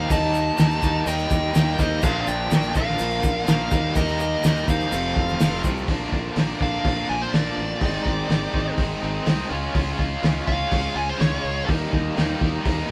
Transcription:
Already playing: A#3 D#4 G4 D#5 F5
0.10 D#2 D#3 G3 A#3 D#4 D#5 A5, kick, open hi-hat, shaker
0.34 shaker
0.57 D#2 D#3 G3 A#3 D#4, snare, open hi-hat, shaker
0.71 shaker
0.82 D#2 D#3 G3 A#3 D#4, kick, shaker
1.05 D#2 D#3 G3 A#3 D#4 D#5 G5, open hi-hat, shaker
1.18 shaker
1.30 D#2, kick, shaker
1.54 D#2 D#3 G3 A#3 D#4, snare, open hi-hat, shaker
1.78 D#2 D#3 G3 A#3 D#4 C5 D#5, kick, shaker
2.02 A#1 A#2 D3 F3 A#3 D4 F4 A#4 D5 F5, kick, crash, shaker
2.20 D5 F5
2.27 A#1 D5 G5, shaker
2.50 A#1 A#2 D3 F3 A#3 D4, snare, open hi-hat, shaker
2.63 shaker
2.75 A#1 A#2 D3 F3 A#3 D4 A#4 F5, kick, shaker
2.89 snare
2.99 A#1 A#2 D3 F3 A#3 D4, open hi-hat, shaker
3.11 shaker
3.23 A#1, kick, shaker
3.47 A#1 A#2 D3 F3 A#3 D4 A#4 F5, snare, open hi-hat, shaker
3.71 D#2 D#3 G3 A#3 D#4 G4 D#5, kick, shaker
3.95 D#2 D#3 G3 A#3 D#4 A#4 D#5, kick, open hi-hat, shaker
4.08 shaker
4.20 A#4 D#5, shaker
4.44 D#2 D#3 G3 A#3 D#4, snare, open hi-hat, shaker
4.57 shaker
4.68 D#2 D#3 G3 A#3 D#4 C5 F5, kick, shaker
4.80 snare, shaker
4.91 F1 F2 C3 F3 A3 C4 A4 F5, open hi-hat, shaker
5.16 F1, kick
5.28 snare, shaker
5.40 F1 F2 C3 F3 A3 C4, snare, open hi-hat, shaker
5.64 C2 F2 C3 F3 A3 C4, kick, shaker
5.77 shaker
5.88 A#1 A#2 D3 F3 A#3 D4 F4 D5, kick, open hi-hat
6.12 A#1 F3 A#3 D4, kick
6.36 A#1 D3 F3 A#3 D4, snare, open hi-hat
6.61 A#1 F3 A#3 D4 F5, kick
6.84 A#1 A#2 D3 F3 A#3 D4, kick, open hi-hat
7.09 A#1 F3 A#3 D4 G#5
7.22 C5
7.33 A#1 A#2 D3 F3 A#3 D4 D5, snare, open hi-hat
7.57 A1
7.81 G#1 G#2 D#3 G#3 C4 D#4 C5, kick, open hi-hat
8.04 G#1 G#3 C4 D#4, kick
8.28 G#1 D#3 G#3 C4 D#4, snare, open hi-hat
8.53 G#1 G#3 C4 D#4, kick
8.77 G#1 G#2 D#3 G#3 C4 D#4, kick, open hi-hat
9.02 G#1 G#3 C4 D#4
9.26 C2 G#2 D#3 G#3 C4 D#4, snare, open hi-hat
9.50 C#2 C#3 G#3 C#4 F4 C#5
9.73 C#2 C#3 G#3 C#4 F4, kick, open hi-hat
9.97 C#2 G#3 C#4 F4, kick
10.21 C#2 C#3 G#3 C#4 F4, snare, open hi-hat
10.46 C#2 G#3 C#4 F4 F5, kick
10.71 C#2 C#3 G#3 C#4 F4, kick, open hi-hat
10.95 C#2 G#3 C#4 F4 G#5
11.09 C5
11.18 C#2 C#3 G#3 C#4 F4 C#5, snare, open hi-hat
11.44 C#2
11.67 D#2 D#3 G3 A#3 D#4 G4 D#5, kick, open hi-hat
11.93 D#2 G3 A#3 D#4, kick
12.16 D#2 D#3 G3 A#3 D#4, snare, open hi-hat
12.41 D#2 G3 A#3 D#4, kick
12.64 D#2 D#3 G3 A#3 D#4, kick, open hi-hat

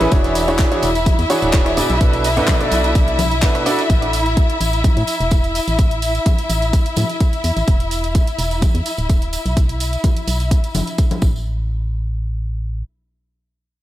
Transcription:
Already playing: E4 E5
0.01 A1 E3 C#4 G#4 A4 B4, snare, closed hi-hat, tambourine
0.11 E1 E3 D4 F#4 G#4 C#5, kick, closed hi-hat, tambourine
0.24 snare, closed hi-hat, tambourine
0.35 closed hi-hat, open hi-hat, tambourine
0.48 E3 D4 F#4 G#4 C#5, closed hi-hat, tambourine
0.58 kick, snare, clap, closed hi-hat, tambourine
0.72 E3 D4 F#4 G#4 C#5, closed hi-hat, tambourine
0.83 E1, closed hi-hat, open hi-hat, tambourine
0.95 closed hi-hat, tambourine
1.06 kick, closed hi-hat, tambourine, high conga
1.19 E2, closed hi-hat, tambourine
1.30 E3 D4 F#4 G#4 C#5, closed hi-hat, open hi-hat, tambourine
1.42 D1, closed hi-hat, tambourine
1.53 E3 D4 F#4 G#4 C#5, kick, snare, clap, closed hi-hat, tambourine
1.66 cross-stick, snare, closed hi-hat, tambourine
1.77 B2 D4 F#4 G#4 D5, closed hi-hat, open hi-hat, tambourine
1.90 B1, snare, closed hi-hat, tambourine
2.01 B2 D4 F#4 A4 B4, kick, closed hi-hat, tambourine
2.13 closed hi-hat, tambourine
2.24 open hi-hat, tambourine
2.36 B2 D4 F#4 A4 B4, closed hi-hat, tambourine
2.47 kick, snare, clap, closed hi-hat, tambourine, high conga
2.61 B2 D4 F#4 A4 D5, closed hi-hat, tambourine
2.72 B1, closed hi-hat, open hi-hat, tambourine
2.84 closed hi-hat, tambourine
2.95 B1, kick, closed hi-hat, tambourine
3.08 closed hi-hat, tambourine
3.19 closed hi-hat, open hi-hat, tambourine, high conga
3.31 closed hi-hat, tambourine
3.42 B2 D4 F#4 A4 B4, kick, snare, clap, closed hi-hat, tambourine
3.55 cross-stick, closed hi-hat, tambourine
3.66 D4 F#4 A4 D5, closed hi-hat, open hi-hat, tambourine
3.78 snare, closed hi-hat, tambourine
3.90 A1, kick, closed hi-hat, tambourine
4.02 closed hi-hat, tambourine
4.13 open hi-hat, tambourine
4.26 closed hi-hat, tambourine
4.37 kick, closed hi-hat, tambourine
4.50 closed hi-hat, tambourine
4.61 A1, open hi-hat, tambourine
4.73 closed hi-hat, tambourine
4.84 kick, closed hi-hat, tambourine, high conga
4.97 A2, closed hi-hat, tambourine
5.07 open hi-hat, tambourine
5.20 E1, closed hi-hat, tambourine
5.31 kick, closed hi-hat, tambourine
5.43 closed hi-hat, tambourine
5.55 open hi-hat, tambourine
5.68 A1, closed hi-hat, tambourine
5.78 kick, closed hi-hat, tambourine
5.91 closed hi-hat, tambourine
6.02 open hi-hat, tambourine
6.15 closed hi-hat, tambourine
6.26 kick, closed hi-hat, tambourine, high conga
6.38 closed hi-hat, tambourine
6.50 A1, open hi-hat, tambourine
6.62 closed hi-hat, tambourine
6.73 kick, closed hi-hat, tambourine
6.86 closed hi-hat, tambourine
6.96 A2, open hi-hat, tambourine, high conga
7.09 closed hi-hat, tambourine
7.20 kick, closed hi-hat, tambourine
7.33 closed hi-hat, tambourine
7.44 E2, open hi-hat, tambourine
7.57 A1, closed hi-hat, tambourine
7.68 E1, kick, closed hi-hat, tambourine
7.80 closed hi-hat, tambourine
7.91 open hi-hat, tambourine
8.04 closed hi-hat, tambourine
8.15 kick, closed hi-hat, tambourine
8.27 closed hi-hat, tambourine
8.39 E1, open hi-hat, tambourine
8.51 closed hi-hat, tambourine
8.62 kick, closed hi-hat, tambourine, high conga
8.75 E2, closed hi-hat, tambourine
8.86 open hi-hat, tambourine
8.97 D1, closed hi-hat, tambourine
9.10 kick, closed hi-hat, tambourine
9.22 closed hi-hat, tambourine
9.33 open hi-hat, tambourine
9.46 B1, closed hi-hat, tambourine
9.57 kick, closed hi-hat, tambourine
9.69 closed hi-hat, tambourine
9.80 open hi-hat, tambourine
9.93 closed hi-hat, tambourine
10.04 kick, closed hi-hat, tambourine, high conga
10.17 closed hi-hat, tambourine
10.28 B1, open hi-hat, tambourine
10.40 closed hi-hat, tambourine
10.51 kick, closed hi-hat, tambourine
10.64 closed hi-hat, tambourine
10.75 F#1, open hi-hat, tambourine, high conga
10.87 closed hi-hat, tambourine
10.98 kick, closed hi-hat, tambourine
11.11 closed hi-hat, tambourine, high conga
11.22 A1, kick, tambourine
11.36 tambourine

